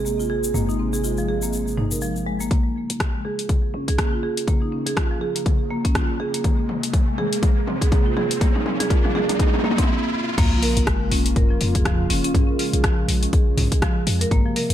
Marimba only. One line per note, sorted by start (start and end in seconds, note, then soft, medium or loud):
0.05 0.19 A#3 medium
0.20 0.29 F4 medium
0.30 0.43 G#4 medium
0.55 0.67 A#3 medium
0.69 0.79 D#4 medium
0.79 0.92 C4 medium
0.93 1.03 G#4 loud
1.04 1.11 F4 medium
1.18 1.28 F3 medium
1.28 1.42 G#4 loud
1.43 1.52 A#3 medium
1.77 1.90 D#4 medium
1.92 2.01 A#4 medium
2.02 2.10 F3 medium
2.26 2.39 G#3 loud
2.41 2.50 A#3 medium
2.51 2.59 A#3 medium
3.14 3.24 G#3 medium
3.25 3.38 G#4 loud
3.74 3.87 C#4 medium
3.88 3.98 G#4 loud
3.99 4.12 A#3 medium
4.13 4.22 F4 medium
4.23 4.37 G#4 loud
4.47 4.60 A#3 medium
4.62 4.72 D#4 medium
4.72 4.85 C#4 medium
4.86 4.96 G#4 loud
4.97 5.05 F4 medium
5.11 5.21 F3 medium
5.21 5.35 G#4 loud
5.35 5.45 A#3 medium
5.70 5.83 A#3 loud
5.85 5.94 C#4 loud
5.95 6.03 F4 medium
6.20 6.33 G#4 loud
6.34 6.43 A#3 medium
6.45 6.52 A#3 medium
7.08 7.17 G#3 medium
7.18 7.32 G#4 loud
7.67 7.80 C4 medium
7.81 7.91 G#4 loud
7.92 8.05 A#3 medium
8.06 8.16 F4 medium
8.17 8.30 G#4 loud
8.41 8.54 A#3 medium
8.56 8.65 D#4 medium
8.66 8.79 C4 medium
8.80 8.89 G#4 loud
8.90 8.98 F4 medium
9.05 9.15 F3 medium
9.15 9.29 G#4 loud
9.29 9.39 A#3 medium
9.64 9.77 A#3 loud
9.78 9.88 C4 loud
10.38 10.46 A#3 loud
10.52 10.62 F3 medium
10.63 10.70 A#4 loud
11.12 11.25 C#4 loud
11.36 11.44 A#4 loud
11.51 11.60 F3 medium
11.75 11.84 G#4 medium
11.86 11.98 F3 loud
12.10 12.23 C#4 loud
12.24 12.34 C#4 loud
12.35 12.48 G#4 medium
12.49 12.58 A#4 medium
12.59 12.73 F4 medium
12.73 12.83 G#4 medium
12.84 12.97 F3 loud
13.23 13.32 C#4 medium
13.33 13.47 G#4 medium
13.72 13.81 G#4 medium
13.82 13.95 F3 loud
14.21 14.27 A#4 loud
14.32 14.39 A#3 loud
14.46 14.55 F3 medium
14.56 14.64 A#4 loud